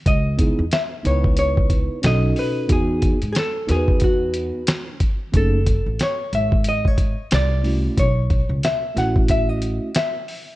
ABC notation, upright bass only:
X:1
M:4/4
L:1/16
Q:"Swing 16ths" 1/4=91
K:F#dor
V:1 name="Upright bass" clef=bass
C,,3 E,, z2 C,,4- C,, z B,,,2 z2 | E,,3 G,, z2 E,,4- E,, z4 z | F,,,3 A,,, z2 G,,,4- G,,, z =C,,4 | B,,,3 C,, z2 A,,,4- A,,, z4 z |]